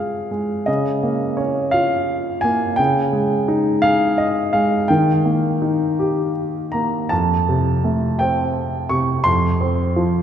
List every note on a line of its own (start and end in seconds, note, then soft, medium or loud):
0.00 0.64 C#3 soft
0.00 0.28 G#3 soft
0.00 0.63 F4 soft
0.00 0.65 G#4 soft
0.00 0.70 F5 medium
0.00 0.69 G5 medium
0.31 0.66 G#3 soft
0.66 2.74 C#3 soft
0.66 1.41 D#5 medium
1.03 2.40 A#3 soft
1.37 2.74 C#4 soft
1.37 1.74 C#5 medium
1.71 2.75 F4 soft
1.71 2.45 F5 medium
2.41 2.77 A#3 soft
2.41 2.78 G#5 medium
2.76 4.85 C#3 medium
2.76 3.85 G5 medium
3.13 4.49 G#3 soft
3.48 4.85 D#4 soft
3.82 4.86 G#4 soft
3.82 4.19 F5 medium
4.18 4.51 D#5 medium
4.53 4.88 G#3 soft
4.53 4.90 F5 medium
4.88 7.08 D#3 medium
4.88 6.31 G5 medium
5.25 6.69 A#3 soft
5.62 7.07 D#4 soft
5.99 7.08 G4 soft
6.72 7.10 A#3 soft
6.72 7.11 A#5 medium
7.09 9.22 F2 soft
7.09 8.16 A5 medium
7.49 8.87 C3 soft
7.84 9.22 A3 soft
8.19 9.23 C4 soft
8.19 8.92 G5 medium
8.89 9.24 C3 soft
8.89 9.26 C#6 medium
9.24 10.22 F2 soft
9.24 10.22 C6 medium
9.61 10.22 C4 soft
9.96 10.22 F3 soft